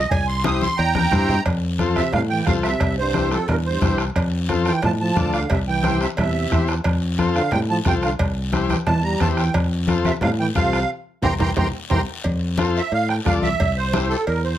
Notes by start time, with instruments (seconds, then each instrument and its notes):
0.10 fingered electric bass C2, accordion G#5, bombo low, cowbell, high conga, long guiro
0.27 accordion C6
0.44 transistor combo organ E4 G4 C5, accordion D#6, bombo rim, high conga, short guiro
0.61 accordion C6, high conga, short guiro
0.77 fingered electric bass E2, accordion G5 A#5, cowbell, long guiro
0.95 bombo rim, high conga
1.11 fingered electric bass G2, transistor combo organ E4 G4 C5, bombo low, bombo rim, low conga, short guiro
1.29 low conga, short guiro
1.46 fingered electric bass F2, bombo low, bombo rim, cowbell, long guiro
1.79 transistor combo organ F4 A4 C5, bombo rim, high conga, short guiro
1.96 trombone C3, accordion E5, bombo rim, high conga, short guiro
2.12 fingered electric bass A2, trombone C3, accordion F5, bombo rim, cowbell, low conga, long guiro
2.29 trombone E3, accordion G5
2.46 fingered electric bass C2, trombone C3, transistor combo organ F4 A4 C5, accordion F5, bombo low, bombo rim, high conga, low conga, low timbale, short guiro
2.63 trombone C3, accordion E5, bombo rim, short guiro
2.80 fingered electric bass C2, bombo low, bombo rim, cowbell, long guiro
2.98 trombone G2, accordion C5
3.13 transistor combo organ E4 G4 C5, bombo rim, high conga, short guiro
3.31 trombone F2, accordion A4, bombo rim, short guiro
3.48 fingered electric bass E2, trombone G2, accordion A#4, bombo rim, cowbell, low conga, long guiro
3.65 trombone G2, accordion C5
3.81 fingered electric bass C2, transistor combo organ E4 G4 C5, bombo low, bombo rim, high conga, low conga, short guiro
3.98 bombo rim, short guiro
4.15 fingered electric bass F2, bombo low, bombo rim, cowbell, long guiro
4.49 transistor combo organ F4 A4 C5, bombo rim, high conga, short guiro
4.65 trombone E3, accordion G5, bombo rim, short guiro
4.82 fingered electric bass A2, trombone F3, accordion A5, bombo rim, cowbell, low conga, long guiro
5.01 trombone F3, accordion A5
5.15 fingered electric bass D2, transistor combo organ F4 A4 D5, bombo low, bombo rim, high conga, low conga, short guiro
5.33 trombone D3, accordion F5, bombo rim, short guiro
5.50 fingered electric bass C2, trombone C3, accordion E5, bombo low, bombo rim, cowbell, long guiro
5.67 trombone E3, accordion G5
5.83 transistor combo organ E4 G4 C5, bombo rim, high conga, short guiro
6.00 trombone C3, accordion E5, bombo rim, short guiro
6.16 fingered electric bass E2, trombone C3, accordion E5, bombo rim, cowbell, low conga, long guiro
6.51 fingered electric bass E2, transistor combo organ E4 G4 C5, bombo low, bombo rim, high conga, short guiro
6.67 bombo rim, short guiro
6.84 fingered electric bass F2, bombo low, bombo rim, cowbell, long guiro
7.18 transistor combo organ F4 A4 C5, bombo rim, high conga, short guiro
7.34 trombone D3, accordion F5, bombo rim, short guiro
7.51 fingered electric bass A2, trombone C3, accordion G5, bombo rim, cowbell, low conga, long guiro
7.70 trombone F3, accordion A5
7.85 fingered electric bass C2, trombone C3, transistor combo organ F4 A4 C5, accordion G5, bombo low, bombo rim, high conga, low conga, short guiro
8.02 trombone D3, accordion F5, bombo rim, short guiro
8.19 fingered electric bass C2, bombo low, bombo rim, cowbell, long guiro
8.52 transistor combo organ E4 G4 C5, bombo rim, high conga, short guiro
8.69 trombone E3, accordion G5, bombo rim, high conga, short guiro
8.86 fingered electric bass E2, trombone E3, accordion A5, bombo rim, cowbell, low conga, long guiro
9.03 trombone G3, accordion A#5
9.20 fingered electric bass E2, trombone E3, transistor combo organ E4 G4 C5, accordion A5, bombo low, bombo rim, high conga, low timbale, short guiro
9.37 trombone E3, accordion G5, bombo rim, short guiro
9.54 fingered electric bass F2, bombo low, bombo rim, cowbell, long guiro
9.87 transistor combo organ F4 A4 C5, bombo rim, high conga, short guiro
10.04 trombone C3, accordion E5, bombo rim, high conga, short guiro
10.21 fingered electric bass A2, trombone C3, accordion F5, bombo rim, cowbell, low conga, long guiro
10.39 trombone E3, accordion G5
10.55 fingered electric bass C2, trombone C3, transistor combo organ F4 A4 C5, accordion F5, bombo low, bombo rim, high conga, short guiro
10.73 bombo rim, short guiro
11.22 fingered electric bass C2, trombone E3, transistor combo organ G4 A#4 C5, accordion G5 A#5 C6, bombo low, low conga, high timbale, long guiro
11.39 fingered electric bass C2, trombone E3, transistor combo organ G4 A#4 C5, accordion G5 A#5 C6, bombo low, low conga, high timbale, long guiro
11.57 fingered electric bass C2, trombone E3, transistor combo organ G4 A#4 C5, accordion G5 A#5 C6, bombo low, low conga, high timbale, long guiro
11.90 fingered electric bass C2, trombone E3, transistor combo organ G4 A#4 C5, accordion G5 A#5 C6, bombo low, low conga, high timbale, long guiro
12.24 fingered electric bass F2, bombo low, cowbell, high conga, long guiro
12.57 transistor combo organ F4 A4 C5, bombo rim, high conga, short guiro
12.76 accordion E5, short guiro
12.92 fingered electric bass A2, accordion F5, cowbell, long guiro
13.09 accordion G5, bombo rim, high conga
13.25 fingered electric bass C2, transistor combo organ F4 A4 D5, accordion F5, bombo low, bombo rim, high conga, low timbale, short guiro
13.43 accordion E5, high conga, short guiro
13.60 fingered electric bass C2, bombo low, cowbell, high conga, long guiro
13.77 accordion C5
13.93 transistor combo organ E4 G4 C5, bombo rim, high conga, short guiro
14.09 accordion A4, short guiro
14.26 fingered electric bass E2, accordion A#4, cowbell, long guiro
14.44 accordion C5, high conga